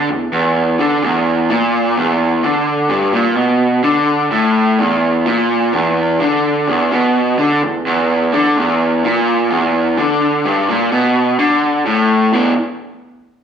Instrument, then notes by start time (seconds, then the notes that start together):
overdriven electric guitar
0.09 E2
0.33 E2
0.79 D3
1.03 E2
1.50 A#2
1.97 E2
2.43 D3
2.90 G2
3.14 A#2
3.37 B2
3.84 D3
4.31 A2
4.79 E2
5.26 A#2
5.73 E2
6.20 D3
6.67 E2
6.91 B2
7.39 D3
7.63 E2
7.87 E2
8.33 D3
8.57 E2
9.04 A#2
9.51 E2
9.98 D3
10.45 G2
10.69 A#2
10.92 B2
11.39 D3
11.86 A2
12.33 E2 B2 E3